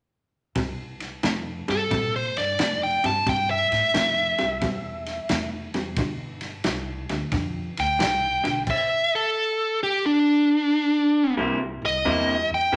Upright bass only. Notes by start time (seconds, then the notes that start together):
0.56 C2
1.24 F2
1.69 G2
1.92 A#2
2.37 G2
2.59 F2
3.04 G2
3.27 G2
3.72 A2
3.95 F2
4.40 C2
4.62 E2
5.30 E2
5.75 E2
5.97 G1
6.66 C2
7.10 D2
7.32 F2
7.78 D2
8.00 C2
8.45 B1
11.38 C2
11.82 C2
12.06 E2
12.50 E2
12.72 G2